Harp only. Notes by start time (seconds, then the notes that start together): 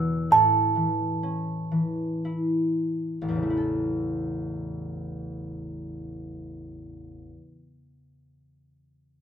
Already playing: E2 B2 C#4
0.31 A2
0.76 E3
1.23 C#4
1.72 E3
2.25 E4
3.22 A1
3.28 E2
3.36 C#3
3.43 A3
3.50 E4
3.57 A4